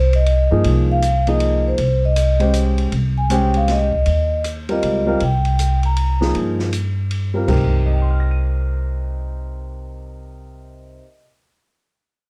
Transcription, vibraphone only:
Already playing: C5
0.16 D#5
0.92 F5
1.29 D#5
1.68 C5
2.05 D#5
3.18 G#5
3.33 G5
3.57 F5
3.71 D#5
4.72 D#5
5.23 G5
5.86 A#5

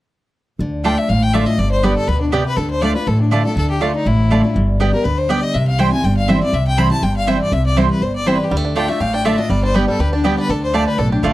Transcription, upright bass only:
0.59 D2
1.09 A1
1.58 G1
2.08 D2
2.57 D2
3.07 A1
3.56 D2
4.06 A1
4.56 G1
5.05 D2
5.54 C2
6.04 G1
6.53 C2
7.02 G1
7.52 C2
8.02 G1
8.51 D2
9.00 A1
9.50 G1
9.99 D2
10.49 D2
10.98 B1
11.23 A1

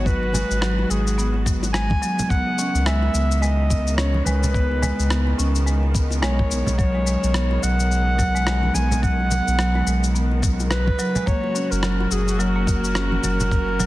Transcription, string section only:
Already playing: D#3 F#3 G#3 B3 F#4
2.31 C#3 D#3 E3
6.78 F#3
11.27 A#2 C#4 F#4

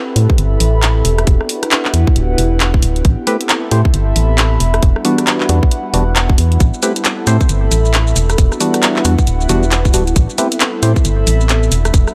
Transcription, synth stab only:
3.27 A3 C4 E4 G4 B4
3.72 A3 C4 E4 G4 C5
5.05 E3 G3 B3 D4 F#4
5.49 E3 G3 B3 D4 F#4
5.94 E3 G3 B3 D4 F#4
6.83 A3 C4 E4 G4 B4
7.27 A3 C4 E4 G4 C5
8.61 E3 G3 B3 D4 F#4
9.05 E3 G3 B3 D4 F#4
9.49 E3 G3 B3 D4 F#4
9.94 E3 G3 B3 D4 F#4
10.38 A3 C4 E4 G4 B4
10.83 A3 C4 E4 G4 C5

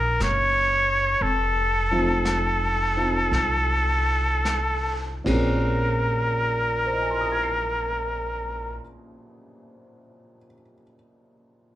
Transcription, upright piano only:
Already playing: F#3 A#3 C#4 D#4 F4 F#4
1.91 F3 A3 C4 D#4 F4
2.96 C4 D#4 F4
5.24 A#2 A#3 C4 C#4 G#4
6.86 C5
6.93 D#5
7.02 G#5
7.11 C6
7.21 D#6
7.32 G#6
7.43 C7

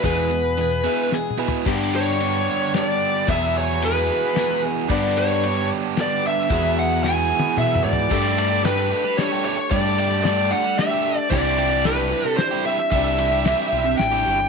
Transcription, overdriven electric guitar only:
0.04 E2 B2 E3
0.31 E2 B2
0.58 E2 B2
0.84 E2 B2 E3
1.11 E2 B2
1.38 E2 B2 E3
1.66 G2 D3 G3 B3 D4 G4
3.27 E2 B2 E3 B3 E4 G#4
4.88 G2 D3 G3 B3 D4 G4
6.49 E2 B2 E3 B3 E4 G#4
8.10 G3 A3 D4 G4
8.37 G3 A3 D4 G4
8.50 A3 D4 G4
8.64 G3 A3 D4 G4
8.90 G3 A3 D4 G4
9.04 muted overdriven electric guitar stroke
9.31 A3 D4 G4
9.57 muted overdriven electric guitar stroke
9.71 G3 A3 D4 G4
9.98 G3 A3 D4 G4
10.11 A3 D4 G4
10.24 G3 A3 D4 G4
10.52 G3 A3 D4 G4
10.65 muted overdriven electric guitar stroke
10.91 A3 D4 G4
11.18 muted overdriven electric guitar stroke
11.30 C3 E3 G3 E4 G4
11.57 E3 G3 E4 G4
11.70 G3 E4 G4
11.84 C3 E3 G3 E4 G4
12.10 E3 G3 E4 G4
12.25 muted overdriven electric guitar stroke
12.51 G3 E4 G4
12.79 muted overdriven electric guitar stroke
12.91 C3 E3 G3 E4 G4
13.18 E3 G3 E4 G4
13.32 G3 E4 G4
13.45 C3 E3 G3 E4 G4
13.72 E3 G3 E4 G4
13.85 muted overdriven electric guitar stroke
14.12 G3 E4 G4
14.39 muted overdriven electric guitar stroke

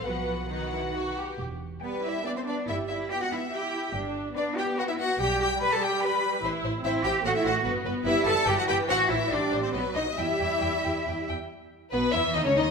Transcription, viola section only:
0.04 F#4 B4
0.51 F#4 B4
1.83 G3
2.25 B3
2.69 G3
3.12 B3
3.54 E4
3.96 D4
4.37 B3
5.20 G3
6.44 E4
6.85 C4
7.25 A3
7.66 B3
8.06 G3
8.48 E3
9.31 G3
9.74 F#3
10.18 G3
11.93 B3
12.13 E4
12.35 D#4
12.45 C#4
12.56 D#4

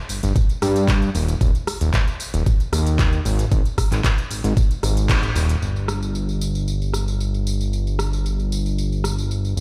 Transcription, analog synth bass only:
0.10 G1
0.23 G1
0.62 G2
1.15 D#1
1.41 D#1
1.81 D#1
2.34 D#1
2.72 D#2
3.25 G#1
3.52 G#1
3.92 G#1
4.31 G#1
4.44 G#1
4.83 G#1
5.36 D#1
5.62 G1
9.57 D#1

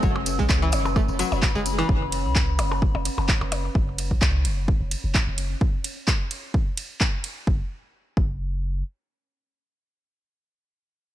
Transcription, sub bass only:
0.03 F#1
0.39 C#2
0.73 F#1
1.09 F#1
1.32 F#1
1.55 F#1
1.89 F#1
2.25 C#2
2.59 F#1
2.95 F#1
3.18 F#1
3.41 F#1
3.75 F#1
4.11 C#2
4.45 F#1
4.81 F#1
5.04 F#1
5.27 F#1
7.47 F#1
8.17 F#1

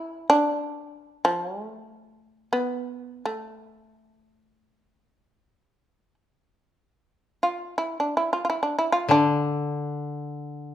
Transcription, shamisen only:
Already playing: E4
0.30 D4
1.25 F3
1.66 A3
2.53 B3
3.25 A3
7.43 F4
7.78 E4
8.00 D4
8.17 E4
8.33 F4
8.45 F4
8.50 E4
8.63 D4
8.79 E4
8.92 F4
9.11 D4

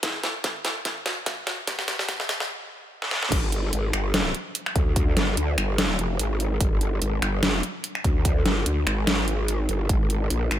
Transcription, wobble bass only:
3.32 G1
3.73 G#1
3.94 G1
4.76 D2
5.17 G1
5.37 D2
5.58 G1
5.99 F1
6.19 G#1
6.61 G1
7.02 G#1
7.22 G1
8.05 D2
8.46 G1
8.66 D2
8.87 G#1
9.69 G1
9.89 G#1
10.31 A#1
10.51 G#1

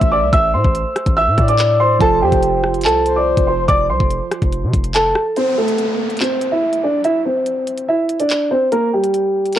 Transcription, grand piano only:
Already playing: E5
0.12 D5 D6
0.33 E5 E6
0.54 C5 C6
1.17 E5 E6
1.49 D5 D6
1.80 C5 C6
2.01 A4 A5
2.22 G4 G5
2.85 A4 A5
3.16 D5 D6
3.47 C5 C6
3.68 D5 D6
3.90 C5 C6
4.94 A4 A5
5.36 C4 C5
5.58 A3 A4
6.21 C4 C5
6.52 E4 E5
6.84 D4 D5
7.04 E4 E5
7.25 C4 C5
7.88 E4 E5
8.20 D4 D5
8.51 C4 C5
8.72 A#3 A#4
8.93 G3 G4
9.56 A#4

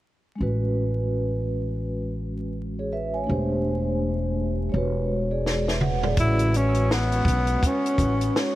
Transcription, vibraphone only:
0.35 G#3 C#4
0.41 F#4 B4
2.79 G#4 C#5
2.93 B4 E5
3.14 C#5 G#5
3.24 A3 D4
3.29 G4 C5
4.69 G#3 C#5
4.74 F#4 B4
5.31 G#4 D5
5.68 B4 E5
5.81 B4 F#5
6.03 G#4 D5
6.14 G#3 C#4
6.19 F#4 B4
8.32 G#3 C#4 F#4 C#5

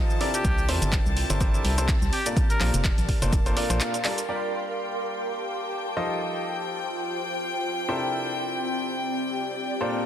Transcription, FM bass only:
0.45 C2
0.69 E2
0.82 G1
1.06 C2
1.30 G1
1.65 C2
2.02 C2
2.61 A#1
2.74 F1
2.98 A#1
3.22 F1
3.70 A#1

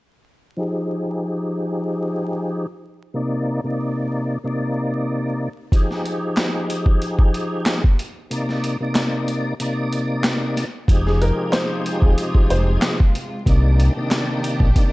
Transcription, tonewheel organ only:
0.57 F3 D#4 G4 G#4
3.14 C3 A#3 D#4 D5
3.64 C3 A#3 D#4 D5
4.44 C3 A#3 D#4 D5
5.73 F3 D#4 G4 G#4
8.30 C3 A#3 D#4 D5
8.80 C3 A#3 D#4 D5
9.60 C3 A#3 D#4 D5
10.89 F3 D#4 G4 G#4
13.46 C3 A#3 D#4 D5
13.96 C3 A#3 D#4 D5
14.76 C3 A#3 D#4 D5

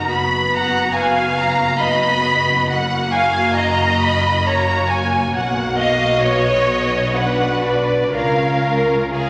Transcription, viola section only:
Already playing: D#4
0.09 B3 F#4
1.82 B3 F#4
2.70 A#3 F#4
4.45 A#3 F#4
5.33 A#3 F#4
6.23 B3
7.14 D4 F#4
8.13 C#4 F4
9.13 C#4 F4

